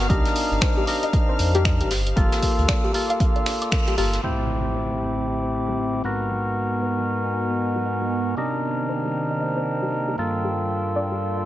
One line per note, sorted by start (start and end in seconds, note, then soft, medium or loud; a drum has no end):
0.00 4.25 F5 medium
0.00 1.87 D#6 medium
0.00 4.25 F6 medium
0.09 0.21 C2 loud
0.09 0.85 D4 medium
0.09 0.85 D#4 medium
0.09 4.20 G4 medium
0.09 0.15 G4 medium
0.09 0.85 A#4 loud
0.09 1.89 C5 medium
0.09 kick loud
0.09 closed hi-hat medium
0.26 snare medium
0.26 closed hi-hat medium
0.36 closed hi-hat medium
0.36 open hi-hat loud
0.51 0.59 G1 medium
0.51 closed hi-hat soft
0.61 0.67 C5 loud
0.61 finger snap loud
0.61 kick loud
0.61 snare loud
0.61 closed hi-hat medium
0.77 0.79 G4 medium
0.87 1.89 D4 medium
0.87 1.90 D#4 medium
0.87 1.90 A#4 medium
0.87 snare soft
0.87 closed hi-hat medium
0.87 open hi-hat medium
1.03 1.05 D#5 medium
1.03 closed hi-hat medium
1.13 1.19 D#5 medium
1.13 kick loud
1.13 closed hi-hat medium
1.29 1.33 C5 medium
1.39 1.82 F2 loud
1.39 closed hi-hat medium
1.39 open hi-hat loud
1.55 1.57 G4 loud
1.55 closed hi-hat medium
1.65 1.71 D#5 medium
1.65 finger snap loud
1.65 kick loud
1.65 snare soft
1.65 closed hi-hat medium
1.81 2.12 G1 medium
1.81 1.83 G4 medium
1.81 closed hi-hat medium
1.91 4.21 F5 medium
1.91 4.21 D6 medium
1.91 snare loud
1.91 closed hi-hat medium
1.91 open hi-hat medium
2.07 closed hi-hat medium
2.16 2.28 G1 loud
2.16 2.91 A#3 loud
2.16 2.92 F4 medium
2.16 2.22 G4 medium
2.16 2.92 A4 loud
2.16 kick loud
2.16 closed hi-hat medium
2.32 snare loud
2.32 closed hi-hat medium
2.43 kick medium
2.43 open hi-hat loud
2.58 2.66 D2 medium
2.58 closed hi-hat medium
2.68 2.74 D5 loud
2.68 finger snap loud
2.68 kick loud
2.68 snare loud
2.68 closed hi-hat medium
2.68 closed hi-hat loud
2.84 2.86 G4 medium
2.84 closed hi-hat soft
2.94 3.95 A#3 medium
2.94 3.96 F4 medium
2.94 3.96 A4 medium
2.94 closed hi-hat medium
2.94 open hi-hat medium
3.10 3.12 F5 medium
3.10 closed hi-hat medium
3.20 3.26 F5 medium
3.20 kick loud
3.20 closed hi-hat medium
3.36 3.39 D5 medium
3.36 closed hi-hat soft
3.46 3.52 D5 medium
3.46 finger snap medium
3.46 snare soft
3.46 closed hi-hat medium
3.46 open hi-hat loud
3.62 3.67 D6 medium
3.62 closed hi-hat medium
3.71 3.78 A#4 medium
3.71 finger snap loud
3.71 kick loud
3.71 snare loud
3.71 closed hi-hat medium
3.88 3.91 G4 loud
3.88 closed hi-hat medium
3.97 4.18 G1 loud
3.97 4.21 A#3 medium
3.97 4.21 F4 medium
3.97 4.06 G4 loud
3.97 4.21 A4 loud
3.97 closed hi-hat medium
3.97 open hi-hat medium
4.13 snare medium
4.13 closed hi-hat medium
4.23 6.02 A2 medium
4.23 6.02 C4 medium
4.23 6.03 C4 medium
4.23 6.02 E4 medium
4.23 4.29 G4 medium
4.23 6.03 G4 medium
4.23 6.03 E5 medium
4.23 6.03 A5 medium
4.23 impact medium
4.75 4.81 C5 loud
4.91 4.93 G4 medium
5.17 5.19 E5 medium
5.27 5.33 E5 medium
5.43 5.46 C5 medium
5.69 5.71 G4 loud
5.79 5.84 E5 medium
5.94 5.97 G4 medium
6.04 8.35 G#2 medium
6.04 8.35 B3 medium
6.04 8.35 F#4 medium
6.04 8.35 A#4 medium
6.04 8.35 D#5 medium
6.04 8.35 G#5 medium
6.31 6.36 F#4 medium
6.82 6.88 B4 loud
6.98 7.00 F#4 medium
7.24 7.26 D#5 medium
7.34 7.40 D#5 medium
7.50 7.53 B4 medium
7.76 7.78 F#4 loud
7.86 7.91 D#5 medium
8.02 8.04 F#4 medium
8.37 10.16 C3 medium
8.37 10.17 D#3 medium
8.37 10.17 A#3 medium
8.37 10.16 D4 medium
8.37 10.16 D#4 medium
8.37 8.43 G4 medium
8.37 10.16 A#4 medium
8.37 10.17 C5 medium
8.37 11.45 G5 medium
8.89 8.95 C5 loud
9.05 9.07 G4 medium
9.31 9.33 D#5 medium
9.41 9.46 D#5 medium
9.56 9.60 C5 medium
9.82 9.85 G4 loud
9.93 9.98 D#5 medium
10.08 10.10 G4 medium
10.18 11.45 G2 medium
10.18 11.45 A#3 medium
10.18 11.45 F4 medium
10.18 11.45 A4 medium
10.18 11.45 D5 medium
10.44 10.50 G4 medium
10.96 11.02 D5 loud
11.12 11.14 G4 medium
11.38 11.40 F5 medium